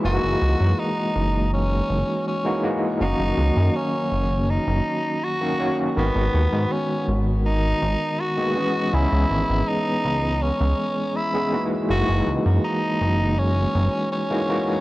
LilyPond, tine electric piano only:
\new Staff \with { instrumentName = "Tine electric piano" } { \time 4/4 \key fis \mixolydian \tempo 4 = 81 <e gis ais dis' fis'>2.~ <e gis ais dis' fis'>16 <e gis ais dis' fis'>16 <e gis ais dis' fis'>8 | <dis fis ais cis' fis'>2.~ <dis fis ais cis' fis'>16 <dis fis ais cis' fis'>16 <dis fis ais cis' fis'>8 | <dis gis b fis' ais'>2.~ <dis gis b fis' ais'>16 <dis gis ais b fis'>16 <e gis b cis' gis'>8 | <e gis b cis' gis'>2.~ <e gis b cis' gis'>16 <e gis b cis' gis'>16 <e gis ais dis' fis'>8 |
<e gis ais dis' fis'>2.~ <e gis ais dis' fis'>16 <e gis ais dis' fis'>16 <e gis ais dis' fis'>8 | }